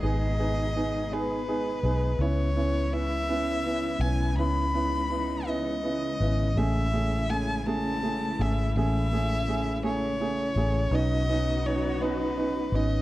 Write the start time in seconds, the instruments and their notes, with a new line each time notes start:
Already playing: string section B2 D#3 G#3 D#4 G#4
0.03 fingered electric bass G#1, upright piano B3 D#4 G#4, violin D#5
0.39 upright piano B3 D#4 G#4
0.76 upright piano B3 D#4 G#4
1.11 upright piano B3 D#4 G#4, violin B4
1.48 upright piano B3 D#4 G#4
1.83 fingered electric bass B1, upright piano B3 D#4 G#4
2.19 fingered electric bass C#2, string section C#3 E3 G#3 B3 E4, upright piano B3 C#4 E4, violin C#5
2.56 upright piano B3 C#4 E4
2.92 upright piano B3 C#4 E4, violin E5
3.29 upright piano B3 C#4 E4
3.65 upright piano B3 C#4 E4
4.00 fingered electric bass B1, upright piano B3 C#4 E4, violin G#5
4.37 fingered electric bass C#2, upright piano B3 C#4 E4, string section D#4, violin B5
4.74 upright piano B3 C#4 E4
5.10 upright piano B3 C#4 E4
5.46 upright piano B3 C#4 E4, violin D#5
5.83 upright piano B3 C#4 E4
6.20 fingered electric bass G#1, upright piano B3 C#4 E4
6.55 fingered electric bass A1, string section E3 A3 E4, upright piano A3 C#4 G#4, violin E5
6.93 upright piano A3 C#4 G#4
7.29 upright piano A3 C#4 G#4, violin G#5
7.66 upright piano A3 C#4 G#4, violin A5
8.03 upright piano A3 C#4 G#4
8.39 fingered electric bass G#1, upright piano A3 C#4 G#4, violin E5
8.76 fingered electric bass A1, upright piano A3 C#4 G#4, violin E5
9.13 upright piano A3 C#4 G#4
9.48 upright piano A3 C#4 G#4
9.84 upright piano A3 C#4 G#4, violin C#5
10.20 upright piano A3 C#4 G#4
10.56 fingered electric bass A1, upright piano A3 C#4 G#4
10.91 fingered electric bass B1, string section F#3 B3 D#4 F#4, upright piano B3 C#4 D#4, violin D#5
11.29 upright piano B3 C#4 D#4
11.65 upright piano B3 C#4 D#4, violin C#5
12.01 upright piano B3 C#4 D#4, violin B4
12.36 upright piano B3 C#4 D#4
12.72 fingered electric bass G#1, upright piano B3 C#4 D#4, violin D#5